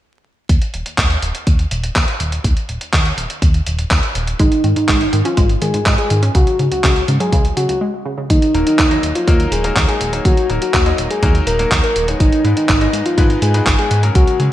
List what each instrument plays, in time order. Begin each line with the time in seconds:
0.49 analog synth bass D#2, kick, closed hi-hat
0.62 closed hi-hat
0.74 analog synth bass D#1, closed hi-hat
0.86 closed hi-hat
0.98 analog synth bass D#2, kick, clap, closed hi-hat
1.10 closed hi-hat
1.22 analog synth bass D#1, closed hi-hat
1.35 closed hi-hat
1.47 analog synth bass D#2, kick, closed hi-hat
1.59 closed hi-hat
1.71 analog synth bass D#1, closed hi-hat
1.83 closed hi-hat
1.96 analog synth bass D#2, kick, clap, closed hi-hat
2.08 closed hi-hat
2.20 analog synth bass D#1, closed hi-hat
2.32 closed hi-hat
2.44 analog synth bass D#2, kick, closed hi-hat
2.57 closed hi-hat
2.69 analog synth bass D#1, closed hi-hat
2.81 closed hi-hat
2.93 analog synth bass D#2, kick, clap, closed hi-hat
3.05 closed hi-hat
3.18 analog synth bass D#1, closed hi-hat
3.30 closed hi-hat
3.42 analog synth bass D#2, kick, closed hi-hat
3.54 closed hi-hat
3.66 analog synth bass D#1, closed hi-hat
3.79 closed hi-hat
3.91 analog synth bass D#2, kick, clap, closed hi-hat
4.03 closed hi-hat
4.15 analog synth bass D#1, closed hi-hat
4.27 closed hi-hat
4.39 analog synth bass G#1, synth arpeggio sound G#3, soft synth lead D#4, kick, closed hi-hat
4.52 closed hi-hat
4.64 analog synth bass G#2, synth arpeggio sound D#3, closed hi-hat
4.76 synth arpeggio sound G#2, soft synth lead D#4, closed hi-hat
4.88 analog synth bass G#1, synth arpeggio sound G#3, kick, clap, closed hi-hat
5.01 closed hi-hat
5.13 analog synth bass G#2, synth arpeggio sound D#3, closed hi-hat
5.25 synth arpeggio sound C#4, soft synth lead F4, closed hi-hat
5.37 analog synth bass G#1, synth arpeggio sound G#3, kick, closed hi-hat
5.49 closed hi-hat
5.62 analog synth bass G#2, synth arpeggio sound D#3, soft synth lead G#4, closed hi-hat
5.74 synth arpeggio sound G#2, closed hi-hat
5.86 analog synth bass G#1, synth arpeggio sound G#3, kick, clap, closed hi-hat
5.98 soft synth lead G#4, closed hi-hat
6.10 analog synth bass G#2, synth arpeggio sound D#3, closed hi-hat
6.23 synth arpeggio sound C#4, closed hi-hat
6.35 analog synth bass C#2, synth arpeggio sound C#3, soft synth lead F#4, kick, closed hi-hat
6.47 closed hi-hat
6.59 synth arpeggio sound G#2, analog synth bass C#3, closed hi-hat
6.71 synth arpeggio sound C#2, soft synth lead F#4, closed hi-hat
6.84 analog synth bass C#2, synth arpeggio sound C#3, kick, clap, closed hi-hat
6.96 closed hi-hat
7.08 synth arpeggio sound G#2, analog synth bass C#3, closed hi-hat
7.20 synth arpeggio sound F#3, soft synth lead G#4, closed hi-hat
7.32 analog synth bass C#2, synth arpeggio sound C#3, kick, closed hi-hat
7.45 closed hi-hat
7.57 synth arpeggio sound C#3, analog synth bass C#3, soft synth lead F#4, closed hi-hat
7.69 synth arpeggio sound C#2, closed hi-hat
7.81 synth arpeggio sound G#3
8.06 synth arpeggio sound C#3
8.18 synth arpeggio sound C#3
8.30 analog synth bass D#2, soft synth lead D#4, kick, closed hi-hat
8.42 closed hi-hat
8.54 analog synth bass D#1, grand piano F#3 A#3 D#4 A#4, closed hi-hat
8.66 soft synth lead D#4, closed hi-hat
8.79 analog synth bass D#2, kick, clap, closed hi-hat
8.91 grand piano F#3 A#3 D#4 D#5, closed hi-hat
9.03 analog synth bass D#1, closed hi-hat
9.15 soft synth lead F4, closed hi-hat
9.28 analog synth bass D#2, grand piano F#3 A#3 D#4 A#4, kick, closed hi-hat
9.40 closed hi-hat
9.52 analog synth bass D#1, soft synth lead G#4, closed hi-hat
9.64 grand piano F#3 A#3 D#4 A#4, closed hi-hat
9.76 analog synth bass D#2, kick, clap, closed hi-hat
9.88 soft synth lead G#4, closed hi-hat
10.01 analog synth bass D#1, closed hi-hat
10.13 grand piano F#3 A#3 D#4 C#5, closed hi-hat
10.25 analog synth bass D#2, soft synth lead F#4, kick, closed hi-hat
10.37 closed hi-hat
10.49 analog synth bass D#1, grand piano F#3 A#3 D#4 A#4, closed hi-hat
10.62 soft synth lead F#4, closed hi-hat
10.74 analog synth bass D#2, kick, clap, closed hi-hat
10.86 grand piano F#3 A#3 D#4 D#5, closed hi-hat
10.98 analog synth bass D#1, closed hi-hat
11.10 soft synth lead G#4, closed hi-hat
11.23 analog synth bass D#2, grand piano F#3 A#3 D#4 A#4, kick, closed hi-hat
11.35 closed hi-hat
11.47 analog synth bass D#1, soft synth lead A#4, closed hi-hat
11.59 grand piano F#3 A#3 D#4 A#4, closed hi-hat
11.71 analog synth bass D#2, kick, clap, closed hi-hat
11.83 soft synth lead A#4, closed hi-hat
11.96 analog synth bass D#1, closed hi-hat
12.08 grand piano G#2 G#3 B3 D#4 C#5, closed hi-hat
12.20 analog synth bass G#1, soft synth lead D#4, kick, closed hi-hat
12.32 closed hi-hat
12.44 analog synth bass G#2, grand piano G#2 G#3 B3 D#4 B4, closed hi-hat
12.57 soft synth lead D#4, closed hi-hat
12.69 analog synth bass G#1, kick, clap, closed hi-hat
12.81 grand piano G#2 G#3 B3 D#4 D#5, closed hi-hat
12.93 analog synth bass G#2, closed hi-hat
13.05 soft synth lead F4, closed hi-hat
13.18 analog synth bass G#1, grand piano G#2 G#3 B3 D#4 B4, kick, closed hi-hat
13.30 closed hi-hat
13.42 analog synth bass G#2, soft synth lead G#4, closed hi-hat
13.54 grand piano G#2 G#3 B3 D#4 B4, closed hi-hat
13.66 analog synth bass G#1, kick, clap, closed hi-hat
13.79 soft synth lead G#4, closed hi-hat
13.91 analog synth bass G#2, closed hi-hat
14.03 grand piano C#3 F#3 G#3 C#4 A#4, closed hi-hat
14.15 analog synth bass C#2, soft synth lead F#4, kick, closed hi-hat
14.27 closed hi-hat
14.40 analog synth bass C#3, grand piano C#3 F#3 G#3 C#4 G#4, closed hi-hat